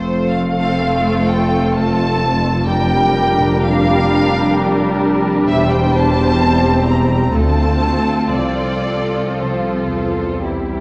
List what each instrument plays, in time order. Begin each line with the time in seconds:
Already playing: double bass section F1, cello section F2, viola section A3 C4, violin section F4 A4 C5
0.27 violin section F5
1.28 violin section G5
1.73 violin section A5
2.67 viola section G3 D4, violin section G4 A#4 G5
3.62 violin section F5
5.46 double bass section E1, cello section E2, violin section C5 E5
5.70 violin section G5
5.94 violin section A5
6.40 viola section C4
6.86 violin section A#5
7.33 cello section D2, double bass section D2, viola section A3, violin section F4 A4 A5
8.35 cello section C2, double bass section C2, viola section F3, violin section D5
9.41 cello section C2, violin section C5
9.93 cello section E2
10.44 viola section G3, violin section E4 G4